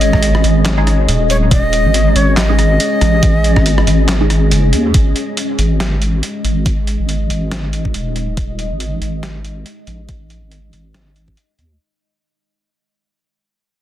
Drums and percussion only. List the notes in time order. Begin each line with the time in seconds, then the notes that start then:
0.01 closed hi-hat
0.13 kick, cross-stick
0.23 closed hi-hat
0.35 cross-stick
0.44 closed hi-hat
0.66 snare, clap, closed hi-hat
0.87 cross-stick, closed hi-hat
1.09 closed hi-hat
1.30 closed hi-hat
1.51 kick, closed hi-hat
1.73 closed hi-hat
1.94 closed hi-hat
2.16 closed hi-hat
2.37 cross-stick, snare, clap, closed hi-hat
2.59 cross-stick, closed hi-hat
2.80 closed hi-hat
3.01 cross-stick, closed hi-hat
3.23 kick, closed hi-hat
3.44 closed hi-hat
3.56 kick, cross-stick
3.66 closed hi-hat
3.78 cross-stick
3.87 closed hi-hat
4.09 snare, clap, closed hi-hat
4.30 cross-stick, closed hi-hat
4.51 closed hi-hat
4.73 closed hi-hat
4.94 kick, closed hi-hat
5.16 closed hi-hat
5.37 closed hi-hat
5.59 closed hi-hat
5.80 snare, closed hi-hat
6.02 closed hi-hat
6.23 closed hi-hat
6.45 closed hi-hat
6.66 kick, closed hi-hat
6.87 closed hi-hat
7.09 closed hi-hat
7.30 closed hi-hat
7.52 snare, closed hi-hat
7.73 closed hi-hat
7.85 kick
7.94 closed hi-hat
8.16 closed hi-hat
8.37 kick, closed hi-hat
8.59 closed hi-hat
8.80 closed hi-hat
9.02 closed hi-hat
9.23 snare, closed hi-hat
9.45 closed hi-hat
9.66 closed hi-hat
9.87 closed hi-hat
10.09 kick, closed hi-hat
10.30 closed hi-hat
10.52 closed hi-hat
10.73 closed hi-hat
10.94 snare, closed hi-hat
11.16 closed hi-hat
11.28 kick
11.37 closed hi-hat
11.59 closed hi-hat